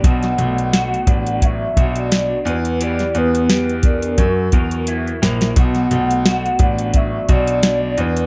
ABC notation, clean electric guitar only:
X:1
M:4/4
L:1/8
Q:"Swing 16ths" 1/4=87
K:Bm
V:1 name="Clean electric guitar"
[B,,F] A, F D F, F D E, | [E,G] B, G D F, ^A E A | [B,,F] A, F D F, F D E, |]